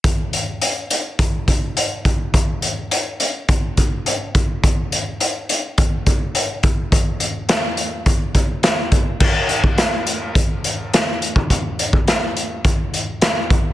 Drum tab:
CC |----------------|----------------|----------------|----------------|
HH |x-x-x-x-x-x-x-x-|x-x-x-x-x-x-x-x-|x-x-x-x-x-x-x-x-|x-x-x-x-x-x-x-x-|
SD |----------------|----------------|----------------|----o-------o---|
BD |o-------o-o---o-|o-------o-o---o-|o-------o-o---o-|o-------o-o---o-|

CC |x---------------|----------------|
HH |--x-x-x-x-x-x-x-|x-x-x-x-x-x-x-x-|
SD |----o-------o---|----o-------o---|
BD |o--o----o------o|o--o----o-----o-|